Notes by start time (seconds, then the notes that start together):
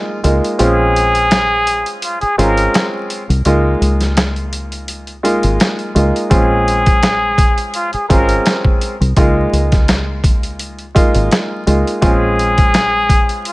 Already playing: G#3 A#3 D#4 F4
0.24 C#2 G#3 A#3 D#4 F4, closed hi-hat
0.45 closed hi-hat
0.59 A#1 G#3 C4 C#4 F4 G#4, closed hi-hat
0.96 closed hi-hat
1.15 closed hi-hat
1.31 snare, closed hi-hat
1.67 closed hi-hat
1.86 closed hi-hat
2.02 F4, closed hi-hat
2.21 G#4, muted fingered electric bass stroke, closed hi-hat
2.38 G#1 G#3 C4 C#4 F4 A#4, closed hi-hat
2.57 closed hi-hat
2.74 snare, closed hi-hat
3.10 closed hi-hat
3.29 C2, closed hi-hat
3.45 C#2 G#3 A#3 D#4 F4, closed hi-hat
3.81 C#2, closed hi-hat
4.01 snare, closed hi-hat
4.17 snare, closed hi-hat
4.36 closed hi-hat
4.53 closed hi-hat
4.72 closed hi-hat
4.88 closed hi-hat
5.07 closed hi-hat
5.23 G#3 A#3 D#4 F4, closed hi-hat
5.43 G#1, closed hi-hat
5.60 snare, closed hi-hat
5.79 closed hi-hat
5.95 C#2 G#3 A#3 D#4 F4, closed hi-hat
6.16 closed hi-hat
6.30 A#1 G#3 C4 C#4 F4 G#4, kick, closed hi-hat
6.68 closed hi-hat
6.86 kick, closed hi-hat
7.03 snare, closed hi-hat
7.38 kick, closed hi-hat
7.58 closed hi-hat
7.74 F4, closed hi-hat
7.93 G#4, muted fingered electric bass stroke, closed hi-hat
8.09 G#1 G#3 C4 C#4 F4 A#4, kick, closed hi-hat
8.29 closed hi-hat
8.46 snare, closed hi-hat
8.64 kick
8.81 closed hi-hat
9.01 C2, closed hi-hat
9.17 C#2 G#3 A#3 D#4 F4, kick, closed hi-hat
9.53 C#2, closed hi-hat
9.72 kick, snare, closed hi-hat
9.88 snare, closed hi-hat
10.24 kick, closed hi-hat
10.43 closed hi-hat
10.59 closed hi-hat
10.79 closed hi-hat
10.95 G#3 A#3 D#4 F4, kick, closed hi-hat
11.15 G#1, closed hi-hat
11.31 snare, closed hi-hat
11.67 C#2 G#3 A#3 D#4 F4, closed hi-hat
11.87 closed hi-hat
12.02 A#1 G#3 C4 C#4 F4 G#4, kick, closed hi-hat
12.39 closed hi-hat
12.58 kick, closed hi-hat
12.74 snare, closed hi-hat
13.09 kick, closed hi-hat
13.29 closed hi-hat
13.45 F4, closed hi-hat